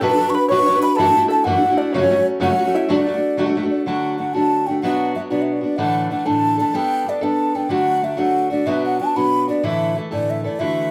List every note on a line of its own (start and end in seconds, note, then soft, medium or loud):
0.01 0.10 B2 medium
0.01 0.10 F#3 medium
0.01 0.10 D4 medium
0.01 0.10 F#4 medium
0.01 0.16 A4 medium
0.01 0.34 A4 medium
0.01 0.08 B4 medium
0.01 0.31 A5 loud
0.10 0.19 D4 medium
0.10 0.19 F#4 medium
0.10 0.18 B4 medium
0.17 0.26 F#3 medium
0.17 0.27 D4 medium
0.17 0.27 F#4 medium
0.17 0.32 A4 medium
0.22 0.26 B4 medium
0.27 0.50 D4 soft
0.27 0.50 F#4 soft
0.27 0.50 B4 soft
0.27 0.36 C#6 medium
0.34 0.48 B4 medium
0.34 0.49 B4 medium
0.34 0.49 B5 loud
0.48 0.58 B2 medium
0.48 0.59 F#3 medium
0.48 0.59 D4 medium
0.48 0.59 F#4 loud
0.48 0.82 C#5 medium
0.48 0.65 C#5 medium
0.48 0.80 C#6 loud
0.52 0.57 B4 medium
0.58 0.68 D4 medium
0.58 0.68 F#4 medium
0.58 0.67 B4 medium
0.66 0.75 F#3 medium
0.66 0.76 D4 medium
0.66 0.76 F#4 medium
0.66 0.82 C#5 medium
0.71 0.74 B4 medium
0.75 0.98 D4 soft
0.75 0.99 F#4 medium
0.75 0.98 B4 medium
0.82 0.96 B4 medium
0.82 0.97 B4 medium
0.82 0.97 B5 loud
0.96 1.06 F#2 medium
0.96 1.07 E3 medium
0.96 1.07 A3 medium
0.96 1.07 D4 medium
0.96 1.07 E4 medium
0.96 1.27 A4 medium
0.96 1.29 A4 medium
0.96 1.29 A5 loud
1.00 1.06 F#4 medium
1.07 1.14 A3 soft
1.07 1.15 D4 medium
1.07 1.16 E4 medium
1.07 1.15 F#4 medium
1.15 1.23 A3 medium
1.15 1.23 D4 medium
1.15 1.23 E4 medium
1.15 1.21 F#4 medium
1.22 1.46 A3 soft
1.22 1.46 D4 soft
1.22 1.46 E4 soft
1.22 1.45 F#4 soft
1.28 1.43 A4 medium
1.28 1.46 A4 medium
1.28 1.46 A5 medium
1.44 1.54 F#2 medium
1.44 1.54 E3 medium
1.44 1.55 A3 medium
1.44 1.55 D4 medium
1.44 1.55 E4 medium
1.44 1.75 F#4 medium
1.44 1.79 F#4 medium
1.44 1.54 F#4 medium
1.44 1.79 F#5 loud
1.55 1.62 A3 medium
1.55 1.63 D4 medium
1.55 1.64 E4 medium
1.55 1.63 F#4 medium
1.63 1.71 A3 medium
1.63 1.71 D4 medium
1.63 1.70 E4 medium
1.63 1.69 F#4 medium
1.70 1.94 A3 soft
1.70 1.94 D4 medium
1.70 1.94 E4 medium
1.70 1.93 F#4 medium
1.77 1.92 D4 medium
1.77 1.94 D4 medium
1.77 1.95 D5 medium
1.93 2.02 F#2 medium
1.93 2.02 C#3 medium
1.93 2.03 F#3 medium
1.93 2.02 A3 loud
1.93 2.23 C#4 medium
1.93 2.24 C#4 medium
1.93 2.02 C#4 medium
1.93 2.00 F#4 loud
1.93 2.26 C#5 loud
2.01 2.08 F#3 medium
2.01 2.09 A3 medium
2.01 2.10 C#4 medium
2.01 2.10 F#4 medium
2.09 2.18 F#3 medium
2.09 2.17 A3 medium
2.09 2.16 C#4 medium
2.09 2.15 F#4 medium
2.16 2.40 F#3 soft
2.16 2.40 A3 soft
2.16 2.40 C#4 soft
2.16 2.40 F#4 soft
2.40 2.49 F#2 medium
2.40 2.50 C#3 medium
2.40 2.49 F#3 medium
2.40 2.49 A3 medium
2.40 2.48 C#4 medium
2.40 2.71 F#4 medium
2.40 2.75 F#4 medium
2.40 2.46 F#4 medium
2.40 2.77 F#5 loud
2.48 2.55 F#3 soft
2.48 2.56 A3 soft
2.48 2.57 C#4 medium
2.48 2.57 F#4 medium
2.56 2.65 F#3 medium
2.56 2.65 A3 medium
2.56 2.64 C#4 medium
2.56 2.63 F#4 medium
2.64 2.88 F#3 medium
2.64 2.88 A3 medium
2.64 2.89 C#4 medium
2.64 2.88 F#4 medium
2.75 2.89 E4 medium
2.75 2.90 E5 medium
2.89 2.98 D3 medium
2.89 2.98 F#3 medium
2.89 2.97 A3 medium
2.89 3.51 D4 medium
2.89 2.96 D4 medium
2.89 3.51 D4 medium
2.89 2.95 F#4 loud
2.89 3.45 D5 loud
2.96 3.05 A3 medium
2.96 3.06 D4 soft
2.96 3.06 F#4 medium
3.05 3.14 F#3 medium
3.05 3.14 A3 medium
3.05 3.15 D4 medium
3.05 3.13 F#4 medium
3.14 3.37 A3 soft
3.14 3.38 D4 soft
3.14 3.37 F#4 soft
3.37 3.46 D3 medium
3.37 3.46 F#3 medium
3.37 3.47 A3 loud
3.37 3.46 D4 medium
3.37 3.45 F#4 loud
3.46 3.56 A3 medium
3.46 3.55 D4 medium
3.46 3.55 F#4 medium
3.55 3.63 F#3 medium
3.55 3.64 A3 medium
3.55 3.63 D4 medium
3.55 3.62 F#4 medium
3.63 3.86 A3 medium
3.63 3.86 D4 medium
3.63 3.86 F#4 medium
3.70 3.85 D5 medium
3.85 4.37 D3 medium
3.85 4.17 F#3 medium
3.85 4.18 A3 medium
3.85 4.20 D4 medium
3.85 4.19 F#4 medium
3.85 4.16 F#5 medium
4.18 4.33 F#3 medium
4.18 4.34 A3 soft
4.18 4.35 D4 medium
4.18 4.33 F#4 medium
4.18 4.35 F#5 medium
4.34 4.82 D3 soft
4.34 4.68 F#3 medium
4.34 4.68 A3 medium
4.34 4.69 D4 medium
4.34 4.67 F#4 medium
4.34 4.68 A5 loud
4.67 4.83 D4 soft
4.67 4.82 F#4 soft
4.67 4.82 G5 medium
4.71 4.83 A3 soft
4.82 5.15 B2 medium
4.82 5.13 F#3 medium
4.82 5.15 B3 medium
4.82 5.17 D4 medium
4.82 5.16 F#4 medium
4.82 5.13 F#5 medium
5.15 5.30 F#3 medium
5.15 5.30 B3 soft
5.15 5.29 D4 medium
5.15 5.29 F#4 medium
5.15 5.21 E5 medium
5.30 5.64 B2 medium
5.30 5.64 F#3 medium
5.30 5.63 B3 medium
5.30 5.63 D4 medium
5.30 5.60 F#4 medium
5.30 5.43 D5 medium
5.42 5.54 E5 medium
5.52 5.63 D5 medium
5.61 5.78 B3 soft
5.61 5.78 D4 soft
5.61 5.77 F#4 soft
5.61 5.78 D5 medium
5.77 6.11 A2 medium
5.77 6.12 D3 medium
5.77 6.08 E3 medium
5.77 6.10 A3 medium
5.77 6.11 D4 medium
5.77 6.12 A4 medium
5.77 6.10 F#5 loud
6.09 6.26 E3 medium
6.09 6.25 A3 medium
6.09 6.25 D4 medium
6.09 6.24 A4 medium
6.09 6.28 F#5 medium
6.25 6.60 A2 medium
6.25 6.64 D3 medium
6.25 6.59 E3 medium
6.25 6.60 A3 medium
6.25 6.59 D4 medium
6.25 6.57 A4 medium
6.25 6.59 A5 loud
6.58 6.73 E3 soft
6.58 6.74 A3 soft
6.58 6.73 D4 medium
6.58 6.74 A4 medium
6.58 6.77 A5 loud
6.74 7.04 G3 medium
6.74 7.05 B3 medium
6.74 7.07 D4 medium
6.74 7.07 A4 medium
6.74 7.11 G5 loud
7.06 7.22 G3 soft
7.06 7.21 B3 soft
7.06 7.21 D4 medium
7.06 7.20 A4 soft
7.06 7.25 D5 medium
7.21 7.56 G3 medium
7.21 7.56 B3 medium
7.21 7.55 D4 medium
7.21 7.53 A4 medium
7.21 7.57 A5 loud
7.55 7.70 B3 soft
7.55 7.70 D4 soft
7.55 7.70 A4 medium
7.55 7.72 G5 medium
7.69 8.18 D3 medium
7.69 8.01 F#3 medium
7.69 8.01 A3 medium
7.69 8.03 D4 medium
7.69 8.03 F#4 medium
7.69 8.05 F#5 loud
8.02 8.17 F#3 soft
8.02 8.17 A3 soft
8.02 8.16 D4 medium
8.02 8.16 F#4 medium
8.02 8.20 E5 medium
8.17 8.65 D3 medium
8.17 8.52 F#3 medium
8.17 8.51 A3 medium
8.17 8.52 D4 medium
8.17 8.49 F#4 medium
8.17 8.50 F#5 loud
8.50 8.67 A3 soft
8.50 8.67 D4 soft
8.50 8.66 F#4 soft
8.50 8.68 D5 medium
8.66 8.99 B2 medium
8.66 8.98 F#3 medium
8.66 8.99 B3 medium
8.66 9.01 D4 medium
8.66 9.01 F#4 medium
8.66 8.85 E5 loud
8.86 9.00 F#5 medium
8.99 9.15 F#3 soft
8.99 9.16 B3 soft
8.99 9.15 D4 medium
8.99 9.15 F#4 medium
8.99 9.18 A5 loud
9.16 9.50 B2 medium
9.16 9.49 F#3 medium
9.16 9.49 B3 medium
9.16 9.48 D4 medium
9.16 9.46 F#4 medium
9.16 9.49 B5 loud
9.48 9.64 B3 soft
9.48 9.64 D4 medium
9.48 9.63 F#4 medium
9.48 9.66 D5 medium
9.63 9.96 A2 medium
9.63 9.98 D3 medium
9.63 9.94 E3 medium
9.63 9.96 A3 medium
9.63 9.96 E4 medium
9.63 9.98 A4 medium
9.63 9.97 E5 loud
9.95 10.11 E3 medium
9.95 10.10 A3 soft
9.95 10.11 E4 medium
9.95 10.10 A4 medium
10.11 10.45 A2 medium
10.11 10.48 D3 medium
10.11 10.45 E3 medium
10.11 10.46 A3 medium
10.11 10.44 E4 medium
10.11 10.44 A4 medium
10.11 10.32 D5 medium
10.30 10.44 E5 medium
10.44 10.59 E3 soft
10.44 10.59 A3 soft
10.44 10.59 E4 soft
10.44 10.60 A4 medium
10.44 10.61 D5 medium
10.59 10.91 D3 medium
10.59 10.91 E3 medium
10.59 10.91 A3 medium
10.59 10.91 E4 medium
10.59 10.91 F#4 medium
10.59 10.91 E5 loud